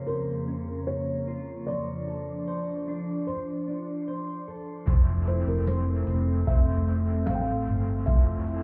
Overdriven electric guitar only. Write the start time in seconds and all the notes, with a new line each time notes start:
4.86 F2 E3 A3 C4 E4 C5
5.26 C4 E4 C5
5.30 A3
6.46 A3 C4 E4
6.50 C5
7.26 A3 C4
7.31 C5
8.06 F2 E3 A3 C4 E4 C5
8.46 C4 E4 C5
8.50 A3